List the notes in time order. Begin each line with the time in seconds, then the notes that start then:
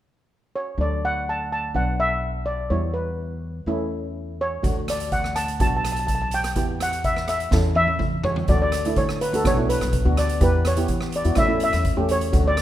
0.56 C#5
0.78 D2 F#3 A3 D4 D5
1.05 F#5
1.29 A5
1.52 A5
1.74 B1 F#3 B3 D4 F#5
2.00 E5
2.46 D5
2.70 E2 G3 B3 E4 C#5
2.94 B4
3.66 E2 A3 C#4 E4
4.41 C#5
4.63 D2 A3 D4 F#4, kick, closed hi-hat
4.88 D5, cross-stick, closed hi-hat
5.00 closed hi-hat
5.12 F#5, kick, closed hi-hat
5.24 cross-stick
5.36 A5, cross-stick, closed hi-hat
5.48 closed hi-hat
5.60 B1 B3 D4 F#4 A5, kick, closed hi-hat
5.67 A5
5.77 A5
5.84 A5, cross-stick, closed hi-hat
5.92 A5
5.96 A5, closed hi-hat
6.07 A5, kick, closed hi-hat
6.15 A5
6.22 A5
6.31 G5, closed hi-hat
6.44 cross-stick, closed hi-hat
6.56 E2 B3 E4 G4, kick, closed hi-hat
6.80 F#5, cross-stick, closed hi-hat
6.93 closed hi-hat
7.04 E5, kick, closed hi-hat
7.16 cross-stick
7.28 E5, cross-stick, closed hi-hat
7.40 closed hi-hat
7.51 E2 C#4 E4 A4, kick, snare
7.75 E5, high tom
7.87 high tom
7.99 kick, mid tom
8.24 C#5, floor tom
8.36 floor tom
8.48 D2 A3 D4 F#4 D5, kick, closed hi-hat
8.62 D5
8.72 cross-stick, closed hi-hat
8.85 A3 D4 E4, closed hi-hat
8.96 D3 C#5, kick, closed hi-hat
9.09 cross-stick
9.21 B4, closed hi-hat
9.33 D2 A3 D4 F#4 A4, closed hi-hat
9.44 B1 B3 D4 F#4 C#5, kick, cross-stick, closed hi-hat
9.57 B3 D4 E4
9.69 B4, closed hi-hat
9.81 B1, cross-stick, closed hi-hat
9.93 kick, closed hi-hat
10.05 D2 B3 D4 F#4
10.17 D5, cross-stick, closed hi-hat
10.29 closed hi-hat
10.41 E2 B3 E4 G4 B4, kick, closed hi-hat
10.65 C#5, cross-stick, closed hi-hat
10.77 B3 E4 G4, closed hi-hat
10.88 E3, kick, closed hi-hat
11.01 cross-stick
11.12 D5, closed hi-hat
11.24 E2 B3 E4 F#4, closed hi-hat
11.35 E2 A3 C#4 E4 E5, kick, cross-stick, closed hi-hat
11.48 A3 C#4 E4
11.60 E5, closed hi-hat
11.73 E2, cross-stick, closed hi-hat
11.85 kick, closed hi-hat
11.97 E2 A3 C#4 G4
12.09 C#5, closed hi-hat
12.21 closed hi-hat
12.32 D2 A3 D4 F#4, kick, closed hi-hat
12.48 D5
12.57 cross-stick, closed hi-hat